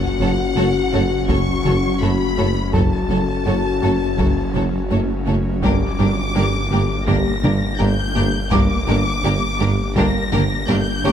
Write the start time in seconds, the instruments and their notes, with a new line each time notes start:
Already playing: detuned saw bass F#1, ambient pad F#3 C#4 F#4 C#5, french horn section C#4 F#4, violin section F#5
0.20 double bass section F#1, tuba F#1, cello section F#2, viola section A3 F#4, synth pluck C#4, violin section A4 C#5
0.56 double bass section F#1, tuba F#1, cello section F#2, viola section A3 F#4, synth pluck F#4, violin section A4 C#5
0.93 double bass section F#1, tuba F#1, cello section F#2, viola section A3 F#4, synth pluck F#4, violin section A4 C#5
1.28 double bass section F#1, tuba F#1, cello section F#2, synth pluck F#3, viola section A3 F#4, violin section A4 C#5 C#6, taiko
1.65 double bass section F#1, tuba F#1, cello section F#2, viola section A3 F#4, synth pluck C#4, violin section A4 C#5, taiko mid
2.01 double bass section F#1, tuba F#1, cello section F#2, viola section A3 F#4, synth pluck A3, violin section A4 C#5 B5
2.37 double bass section F#1, tuba F#1, cello section F#2, viola section A3 F#4, synth pluck A3, violin section A4 C#5
2.73 detuned saw bass F#1, double bass section F#1, tuba F#1, cello section F#2, ambient pad F#3 C#4 F#4 C#5, synth pluck F#3, viola section A3 F#4, french horn section C#4 F#4, felt piano A4 A5, violin section A4 C#5 A5, taiko
3.10 double bass section F#1, tuba F#1, cello section F#2, viola section A3 F#4, synth pluck C#4, violin section A4 C#5
3.46 double bass section F#1, tuba F#1, cello section F#2, viola section A3 F#4, synth pluck F#4, violin section A4 C#5
3.82 double bass section F#1, tuba F#1, cello section F#2, viola section A3 F#4, synth pluck F#4, violin section A4 C#5
4.18 double bass section F#1, tuba F#1, cello section F#2, synth pluck F#3, viola section A3 F#4, violin section A4 C#5, taiko
4.54 double bass section F#1, tuba F#1, cello section F#2, viola section A3 F#4, synth pluck C#4, violin section A4 C#5, taiko mid
4.90 tuba F#1, double bass section F#1, cello section F#2, viola section A3 F#4, synth pluck A3, violin section A4 C#5
5.27 double bass section F#1, tuba F#1, cello section F#2, viola section A3 F#4, synth pluck A3, violin section A4 C#5
5.62 detuned saw bass G1, double bass section G1, tuba G1, cello section G2, synth pluck G3, french horn section A#3 G4, viola section A#3 D4, ambient pad A#3 D4 G4 A#4, violin section G4 A#4 D6, taiko
5.99 double bass section G1, tuba G1, cello section G2, viola section A#3 D4, synth pluck D4, violin section G4 A#4
6.35 double bass section G1, tuba G1, cello section G2, viola section A#3 D4, synth pluck G4, violin section G4 A#4
6.71 tuba G1, double bass section G1, cello section G2, viola section A#3 D4, synth pluck G4, violin section G4 A#4
7.07 tuba G1, double bass section G1, cello section G2, synth pluck G3, french horn section A#3 G4, viola section A#3 D4, violin section G4 A#4 A#6, taiko
7.43 tuba G1, double bass section G1, cello section G2, viola section A#3 D4, synth pluck D4, violin section G4 A#4, taiko mid
7.79 double bass section G1, tuba G1, cello section G2, synth pluck A#3, viola section A#3 D4, violin section G4 A#4 G6
8.15 double bass section G1, tuba G1, cello section G2, synth pluck A#3, viola section A#3 D4, violin section G4 A#4
8.51 double bass section G1, detuned saw bass G1, tuba G1, cello section G2, synth pluck G3, french horn section A#3 G4, viola section A#3 D4, ambient pad A#3 D4 G4 A#4, violin section G4 A#4 D6, felt piano D6, taiko
8.87 double bass section G1, tuba G1, cello section G2, viola section A#3 D4, synth pluck D4, violin section G4 A#4
9.24 tuba G1, double bass section G1, cello section G2, viola section A#3 D4, synth pluck G4, violin section G4 A#4
9.60 tuba G1, double bass section G1, cello section G2, viola section A#3 D4, violin section G4 A#4, synth pluck G4
9.95 tuba G1, double bass section G1, cello section G2, synth pluck G3, french horn section A#3 G4, viola section A#3 D4, violin section G4 A#4 A#6, taiko
10.32 tuba G1, double bass section G1, cello section G2, viola section A#3 D4, synth pluck D4, violin section G4 A#4, taiko mid
10.68 tuba G1, double bass section G1, cello section G2, synth pluck A#3, viola section A#3 D4, violin section G4 A#4 G6
11.04 tuba G1, double bass section G1, cello section G2, synth pluck A#3, viola section A#3 D4, violin section G4 A#4, felt piano C#5 C#6